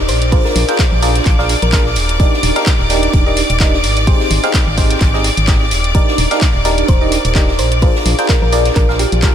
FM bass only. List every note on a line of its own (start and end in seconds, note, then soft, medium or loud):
0.00 0.10 D#1 medium
0.09 0.38 A#1 medium
0.56 0.64 A#1 loud
0.92 1.20 A#1 medium
1.26 1.56 A#1 medium
1.62 1.98 A#1 medium
1.96 2.26 D#1 medium
2.43 2.52 D#1 loud
2.79 3.08 D#1 medium
3.13 3.43 D#1 medium
3.50 3.85 D#1 medium
3.84 4.13 G#1 medium
4.31 4.39 G#1 loud
4.67 4.96 G#1 medium
5.01 5.31 G#1 medium
5.37 5.73 G#1 medium
5.71 6.01 D#1 medium
6.18 6.27 D#1 loud
6.55 6.83 D#1 medium
6.88 7.18 D#1 medium
7.25 7.60 D#1 medium
7.59 7.88 A#1 medium
8.06 8.14 A#1 loud
8.42 8.70 A#1 medium
8.76 9.06 A#1 medium
9.12 9.35 A#1 medium